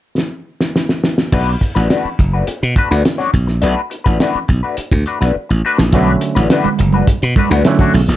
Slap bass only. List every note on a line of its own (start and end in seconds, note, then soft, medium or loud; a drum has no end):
1.32 1.55 B1 loud
1.76 1.87 A1 medium
2.05 muted slap bass stroke soft
2.19 2.41 F#1 medium
2.48 muted slap bass stroke soft
2.63 2.74 B2 medium
2.91 3.02 D2 medium
3.34 3.49 B1 medium
3.49 3.60 A#1 loud
3.63 3.74 B1 loud
4.06 4.17 A1 medium
4.35 muted slap bass stroke soft
4.49 4.60 B1 medium
4.78 muted slap bass stroke soft
4.92 5.03 D2 medium
5.21 5.32 B1 medium
5.36 muted slap bass stroke soft
5.50 5.61 A1 medium
5.79 5.90 A#1 medium
5.93 6.15 B1 loud
6.36 6.47 A1 medium
6.65 muted slap bass stroke soft
6.80 7.02 F#1 medium
7.07 muted slap bass stroke soft
7.23 7.33 B2 medium
7.51 7.62 D2 medium
7.94 8.05 B1 medium
8.08 8.17 A#1 medium